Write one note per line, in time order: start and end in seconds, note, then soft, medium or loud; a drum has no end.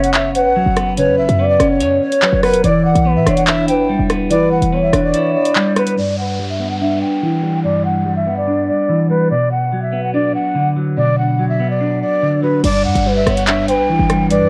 0.00 0.47 F#1 loud
0.00 0.35 C#3 loud
0.00 0.75 B3 medium
0.00 0.97 C#4 loud
0.00 0.32 C#5 loud
0.00 0.13 F#5 medium
0.00 closed hi-hat medium
0.14 1.18 C#5 medium
0.14 0.33 E5 medium
0.14 clap loud
0.14 closed hi-hat medium
0.35 0.55 B4 medium
0.35 0.93 F#5 medium
0.35 closed hi-hat medium
0.45 0.65 A#1 loud
0.56 1.60 F#3 medium
0.66 1.09 F#1 loud
0.76 1.38 B3 medium
0.76 cross-stick medium
0.76 closed hi-hat medium
0.97 2.02 C#3 medium
0.97 1.36 B4 loud
0.97 1.16 C#5 loud
0.97 closed hi-hat medium
1.08 1.20 F#2 loud
1.18 1.28 F#1 loud
1.18 1.47 E5 medium
1.29 1.59 F#2 loud
1.29 closed hi-hat medium
1.39 2.42 B3 medium
1.39 1.78 D5 medium
1.49 1.68 D5 medium
1.60 1.82 F#1 loud
1.60 2.64 C#4 medium
1.60 cross-stick medium
1.60 closed hi-hat medium
1.70 2.00 C#5 medium
1.80 2.00 F#2 loud
1.80 2.20 C#5 medium
1.80 2.64 C#5 medium
1.80 closed hi-hat medium
2.01 2.41 C#5 loud
2.12 closed hi-hat medium
2.22 2.64 F#3 medium
2.22 2.42 B4 medium
2.22 clap loud
2.33 2.55 F#1 loud
2.43 2.64 B3 medium
2.43 2.63 A#4 medium
2.43 2.62 B4 medium
2.43 cross-stick medium
2.43 open hi-hat medium
2.53 2.63 E1 loud
2.53 closed hi-hat medium
2.64 2.86 E1 loud
2.64 3.68 E3 loud
2.64 3.03 D5 loud
2.64 2.83 D5 loud
2.64 closed hi-hat medium
2.85 2.95 D1 loud
2.85 3.14 F#5 medium
2.95 3.18 B1 loud
2.95 closed hi-hat medium
3.05 4.09 B3 medium
3.05 3.25 B4 medium
3.16 3.26 B2 loud
3.16 3.35 E5 medium
3.26 3.80 E1 loud
3.26 4.31 D4 loud
3.26 3.66 C#5 medium
3.26 cross-stick medium
3.26 closed hi-hat loud
3.37 3.46 F#5 medium
3.37 closed hi-hat medium
3.47 4.52 E4 medium
3.47 3.66 E5 loud
3.47 clap loud
3.47 closed hi-hat medium
3.68 3.88 B4 medium
3.68 4.02 G5 medium
3.68 closed hi-hat medium
3.79 3.98 G1 loud
3.89 4.93 G3 medium
3.99 4.43 E1 loud
4.10 4.71 B3 medium
4.10 cross-stick medium
4.10 closed hi-hat medium
4.30 5.35 E3 medium
4.30 4.70 B4 loud
4.30 4.49 D5 loud
4.30 closed hi-hat medium
4.41 4.53 G1 loud
4.51 4.61 E1 loud
4.51 4.81 F#5 medium
4.62 4.92 E1 loud
4.62 closed hi-hat medium
4.72 5.75 B3 medium
4.72 5.72 C#5 loud
4.83 5.01 E5 medium
4.93 5.14 E1 loud
4.93 5.97 D4 medium
4.93 cross-stick medium
4.93 closed hi-hat medium
5.04 5.33 D5 medium
5.14 5.98 E4 medium
5.14 closed hi-hat medium
5.35 5.74 D5 medium
5.45 closed hi-hat medium
5.56 5.97 G3 loud
5.56 clap loud
5.76 5.97 B3 medium
5.76 5.95 B4 medium
5.76 5.96 B4 medium
5.76 cross-stick medium
5.76 closed hi-hat medium
5.87 closed hi-hat medium
5.97 7.02 G2 medium
5.97 6.16 D5 loud
5.97 downlifter medium
6.18 6.48 F#5 medium
6.39 7.41 G3 medium
6.49 6.68 E5 medium
6.60 7.64 B3 medium
6.70 6.80 F#5 medium
6.81 7.85 D4 medium
6.81 6.99 E5 medium
7.02 7.60 G5 medium
7.23 8.27 E3 medium
7.43 8.04 G3 medium
7.64 8.68 G2 medium
7.64 7.83 D5 medium
7.85 8.14 F#5 medium
8.05 9.09 G3 medium
8.16 8.35 E5 medium
8.27 9.31 B3 medium
8.37 8.66 D5 medium
8.47 9.31 D4 medium
8.68 9.07 D5 medium
8.89 9.31 E3 medium
9.10 9.31 G3 medium
9.10 9.29 B4 medium
9.31 10.35 B2 medium
9.31 9.49 D5 loud
9.51 9.81 F#5 medium
9.73 10.75 F#3 medium
9.83 10.02 E5 medium
9.93 10.97 B3 medium
10.04 10.13 F#5 medium
10.14 11.18 D4 medium
10.14 10.33 D5 medium
10.35 10.69 F#5 medium
10.55 11.60 D3 loud
10.77 11.38 F#3 medium
10.97 12.01 B2 medium
10.97 11.16 D5 loud
11.18 11.47 F#5 medium
11.39 12.41 F#3 medium
11.49 11.68 E5 medium
11.60 12.64 B3 medium
11.70 12.00 D5 medium
11.80 12.64 D4 medium
12.02 12.41 D5 medium
12.22 12.64 D3 medium
12.43 12.64 F#3 medium
12.43 12.62 B4 medium
12.64 12.86 G1 loud
12.64 13.68 G2 medium
12.64 12.83 D5 loud
12.64 13.03 D5 loud
12.64 closed hi-hat medium
12.64 crash loud
12.64 downlifter medium
12.85 12.95 G2 loud
12.85 13.14 F#5 medium
12.95 13.25 G1 loud
12.95 closed hi-hat medium
13.06 14.08 G3 medium
13.06 13.25 B4 medium
13.16 13.35 E5 medium
13.26 13.80 G1 loud
13.26 14.31 B3 loud
13.26 13.66 C#5 medium
13.26 cross-stick medium
13.26 closed hi-hat loud
13.37 13.46 F#5 medium
13.37 closed hi-hat medium
13.47 14.49 D4 medium
13.47 13.66 E5 medium
13.47 clap loud
13.47 closed hi-hat medium
13.68 13.88 B4 medium
13.68 14.27 G5 medium
13.68 closed hi-hat medium
13.78 13.98 B1 loud
13.89 14.49 E3 medium
13.99 14.42 G1 loud
14.09 14.49 G3 medium
14.09 cross-stick medium
14.09 closed hi-hat medium
14.31 14.49 G2 medium
14.31 14.49 B4 loud
14.31 14.49 D5 loud
14.31 closed hi-hat medium
14.41 14.49 G2 medium